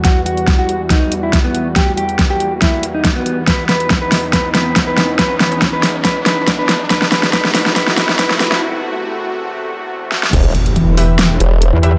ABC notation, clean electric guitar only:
X:1
M:4/4
L:1/16
Q:"Swing 16ths" 1/4=140
K:Em
V:1 name="Clean electric guitar"
F z F2 z F2 z ^D2 z E z B,2 z | G z G2 z G2 z E2 z ^D z B,2 z | B z B2 z B2 z B z B2 z B2 z | B z B2 z B2 z B z B2 z B2 z |
B z B2 B z B2 B z B2 B z B2 | z16 | z16 |]